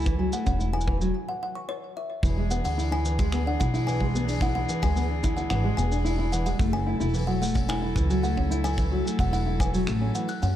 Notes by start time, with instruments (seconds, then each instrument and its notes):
Already playing: upright bass C#2, string quartet F#3 E4 A4
0.02 shaker
0.04 nylon-string guitar E3, kick, shaker
0.07 shaker
0.19 nylon-string guitar F#3
0.32 nylon-string guitar A3, kalimba F#5, shaker
0.46 upright bass E1, nylon-string guitar C#4, kalimba F#5, kick, shaker
0.59 nylon-string guitar E4, shaker
0.73 nylon-string guitar E4, kalimba G#5
0.81 shaker
0.87 nylon-string guitar E3, kick
1.00 nylon-string guitar F#3, shaker
1.29 kalimba F#5
1.43 kalimba F#5
1.55 kalimba C#6
1.69 kalimba C#5
1.97 kalimba E5
2.23 upright bass E1, nylon-string guitar E3, string quartet E3 D4 G#4, kick, open hi-hat, shaker
2.37 nylon-string guitar G#3
2.50 nylon-string guitar B3, kalimba F#5, shaker
2.64 upright bass D2, nylon-string guitar D4, kalimba F#5, open hi-hat, shaker
2.78 nylon-string guitar E4, open hi-hat, shaker
2.91 nylon-string guitar E4, kalimba G#5
3.05 nylon-string guitar E3, shaker
3.18 nylon-string guitar G#3, kick, open hi-hat, shaker
3.32 nylon-string guitar B3, finger snap, open hi-hat, shaker
3.46 nylon-string guitar D4, kalimba F#5
3.60 upright bass B1, nylon-string guitar E4, kalimba F#5, kick, shaker
3.74 nylon-string guitar E4, open hi-hat, shaker
3.87 nylon-string guitar E3, kalimba G#5, open hi-hat, shaker
4.00 nylon-string guitar G#3, kick
4.15 nylon-string guitar B3, shaker
4.28 nylon-string guitar D4, open hi-hat, shaker
4.41 nylon-string guitar E4, kalimba F#5, kick, open hi-hat, shaker
4.55 nylon-string guitar E4, kalimba F#5
4.69 nylon-string guitar E3, shaker
4.82 upright bass D2, nylon-string guitar G#3, kalimba G#5, kick, open hi-hat, shaker
4.96 nylon-string guitar B3, open hi-hat, shaker
5.10 nylon-string guitar D4
5.23 nylon-string guitar E4, kick, shaker
5.37 nylon-string guitar E4, kalimba F#5, shaker
5.50 upright bass G#1, nylon-string guitar E3, kalimba F#5, finger snap, open hi-hat, shaker
5.64 nylon-string guitar G#3
5.77 upright bass E1, nylon-string guitar B3, kalimba G#5, shaker
5.91 nylon-string guitar D4, open hi-hat, shaker
5.98 open hi-hat
6.05 nylon-string guitar E4, open hi-hat, shaker
6.12 open hi-hat
6.19 nylon-string guitar E4
6.32 nylon-string guitar E3, kalimba F#5, shaker
6.46 nylon-string guitar G#3, kalimba F#5, open hi-hat, shaker
6.59 upright bass F#1, string quartet F#3 E4 A4, nylon-string guitar A3, kick, open hi-hat, shaker
6.73 nylon-string guitar C#4, kalimba G#5
6.86 nylon-string guitar E4
7.00 upright bass E1, nylon-string guitar E4, open hi-hat, shaker
7.09 open hi-hat
7.14 nylon-string guitar E3, open hi-hat, shaker
7.18 open hi-hat
7.24 nylon-string guitar F#3, kalimba F#5, open hi-hat
7.28 open hi-hat
7.33 open hi-hat
7.37 nylon-string guitar A3, open hi-hat
7.42 kalimba F#5, shaker
7.45 shaker
7.47 shaker
7.49 shaker
7.52 shaker
7.54 nylon-string guitar C#4, kick, open hi-hat, shaker
7.57 shaker
7.69 nylon-string guitar E4, kalimba G#5, finger snap, open hi-hat, shaker
7.82 nylon-string guitar E4
7.96 upright bass C#2, nylon-string guitar E3, kick, shaker
8.10 nylon-string guitar F#3, open hi-hat, shaker
8.23 nylon-string guitar A3, kalimba F#5, open hi-hat, shaker
8.37 nylon-string guitar C#4, kalimba F#5, kick
8.51 nylon-string guitar E4, shaker
8.64 nylon-string guitar E4, kalimba G#5, open hi-hat, shaker
8.73 open hi-hat
8.78 nylon-string guitar E3, kick, open hi-hat, shaker
8.82 open hi-hat
8.91 nylon-string guitar F#3
9.05 nylon-string guitar A3, shaker
9.19 upright bass E1, nylon-string guitar C#4, kalimba F#5, kick, open hi-hat, shaker
9.32 nylon-string guitar E4, kalimba F#5, open hi-hat, shaker
9.46 nylon-string guitar E4
9.60 nylon-string guitar E3, kalimba G#5, kick, shaker
9.74 nylon-string guitar F#3, open hi-hat, shaker
9.87 upright bass A1, nylon-string guitar A3, finger snap, open hi-hat, shaker
10.01 nylon-string guitar C#4
10.15 nylon-string guitar E3, kalimba F#5, shaker
10.28 kalimba F#6, open hi-hat, shaker
10.42 upright bass F#2, nylon-string guitar C#4, kalimba F#5, open hi-hat, shaker